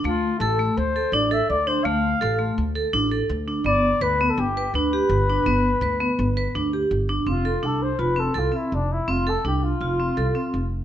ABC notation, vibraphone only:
X:1
M:5/4
L:1/8
Q:1/4=166
K:Flyd
V:1 name="Vibraphone"
A,2 A A,2 A D A2 D | A,2 A A,2 A D A2 D | B,2 B B,2 B D G2 D | B,2 B B,2 B D G2 D |
C A D2 F C A C2 z | C A D2 F C A C2 z |]